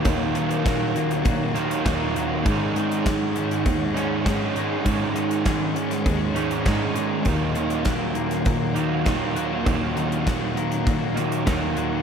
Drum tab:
HH |x-xxx-xxx-xxx-x-|x-xxx-xxx-x-x-x-|x-xxx-xxx-xxx-x-|x-xxx-xxx-x-x-x-|
SD |----o-------o---|----o-------o---|----o--o----o---|----o--o----o---|
BD |o---o---o---o---|o---o---o---o---|o---o---o---o---|o---o---o---o---|

HH |x-xxx-xxx-xxx-x-|
SD |----o-------o---|
BD |o---o---o---o---|